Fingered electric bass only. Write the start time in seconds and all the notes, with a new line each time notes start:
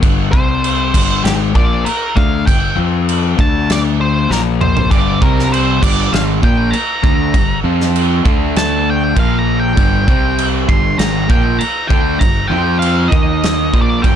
0.03 G1
0.33 C2
0.95 G1
1.25 G#1
1.55 A#1
1.87 muted fingered electric bass stroke
2.16 D2
2.47 G1
2.78 F2
3.39 D2
4.30 A#1
4.91 G1
5.22 C2
5.82 G1
6.13 G#1
6.43 A#1
6.72 muted fingered electric bass stroke
7.04 D2
7.34 G1
7.64 F2
8.25 D2
9.16 A#1
9.77 G1
10.08 C2
10.69 G1
10.99 G#1
11.29 A#1
11.60 muted fingered electric bass stroke
11.90 D2
12.21 G1
12.51 F2
13.12 D#2
13.73 A#1
14.04 G1